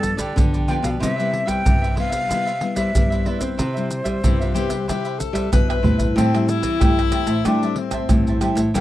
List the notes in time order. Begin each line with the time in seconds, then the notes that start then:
Already playing: G2 F3 B3 D4 A4
0.02 muted cavaquinho stroke, pandeiro, maracas, surdo
0.17 D3 G4 B4 D5, pandeiro, maracas, surdo
0.36 D3 F3 B3 D4, pandeiro, maracas, surdo
0.53 G4 B4 D5, pandeiro, maracas
0.68 F3 B3 D4 F4 G4 B4 D5 G5, pandeiro
0.83 B2 G4 B4 D5 F5, pandeiro, maracas, surdo
1.00 C3 G3 B3 E4 B4 C5 E5, pandeiro, maracas, surdo
1.04 E4
1.16 G3 B3 B4 C5 E5, pandeiro, maracas
1.20 E4
1.31 muted cavaquinho stroke, pandeiro
1.46 G3 B4 C5 E5 G5, pandeiro, maracas, surdo
1.65 G2 C3 G3 B3 E4, pandeiro, maracas, surdo
1.82 B4 C5 E5, pandeiro, maracas
1.95 G3 B3 E4 B4 C5 E5 F5, pandeiro
2.09 B4 C5 E5, pandeiro, maracas, surdo
2.29 C3 G3 B3 E4 B4 C5 E5, pandeiro, maracas, surdo
2.46 B4 C5 E5, pandeiro, maracas
2.61 G3 B3 E4, muted cavaquinho stroke, pandeiro
2.75 G3 B4 C5 E5, pandeiro, maracas, surdo
2.95 G2 G3 B3 E4, pandeiro, maracas, surdo
3.10 B4 C5 E5, pandeiro, maracas
3.25 G3 B3 E4 B4 C5 D5 E5, pandeiro
3.39 C4 B4 C5 E5, pandeiro, maracas, surdo
3.57 C3 E4 B4 C5 E5, pandeiro, maracas, surdo
3.74 G3 E4 B4 C5 E5, pandeiro, maracas
3.89 muted cavaquinho stroke, pandeiro, maracas
4.04 G3 C5 E5, pandeiro, maracas, surdo
4.23 G2 C3 G3 B3 E4, pandeiro, maracas, surdo
4.40 F4 B4 C5 E5, pandeiro, maracas
4.54 G3 B3 E4 G4 B4 C5 E5, pandeiro, maracas
4.69 B4 C5 E5, pandeiro, maracas, surdo
4.87 C3 G3 E4 G4 B4 C5 E5, pandeiro, maracas, surdo
5.04 B4 C5 E5, pandeiro, maracas
5.19 A4, muted cavaquinho stroke, pandeiro, maracas, surdo
5.33 G3 B4 C5 E5, pandeiro, maracas, surdo
5.52 G2 B2 G3 B3 E4 B4, pandeiro, tamborim, maracas, surdo
5.69 B4 C5 E5, pandeiro, tamborim, maracas
5.83 A2 G3 B3 E4 B4 C5 E5, surdo, pandeiro
5.98 B4 C5 E5, pandeiro, maracas, surdo
6.16 A2 G3 C4 E4 G4 C5 E5 A5, pandeiro, maracas, surdo
6.33 G3 C4 E4 C5 E5 A5, pandeiro, tamborim, maracas
6.47 E4, muted cavaquinho stroke, pandeiro, maracas
6.62 E3, pandeiro, maracas, surdo
6.80 E3 G3 A3 C4 E4 G4 C5 E5 A5, pandeiro, tamborim, maracas, surdo
6.97 C5 E5 A5, pandeiro, tamborim, maracas
7.12 G4 C5 E5 A5, pandeiro, tamborim, maracas
7.26 A2 C5 E5 A5, pandeiro, maracas, surdo
7.45 A2 G3 A3 C4 D4 E4 G4 C5 E5 A5, pandeiro, tamborim, maracas, surdo
7.62 G3 C4 E4 C5 E5 A5, pandeiro, maracas
7.76 C4, muted cavaquinho stroke, pandeiro
7.91 C5 E5 A5, pandeiro, tamborim, maracas, surdo
8.09 A2 E3 G3 C4 E4, pandeiro, tamborim, maracas, surdo
8.27 C5 E5 A5, pandeiro, maracas
8.40 G3 C4 E4 G4 C5 E5 A5, pandeiro, tamborim, maracas
8.55 A2 C5 E5 A5, pandeiro, maracas, surdo
8.74 G2 G3 A#3 F4 G4 A4 A#4 D5 F5, pandeiro, maracas, surdo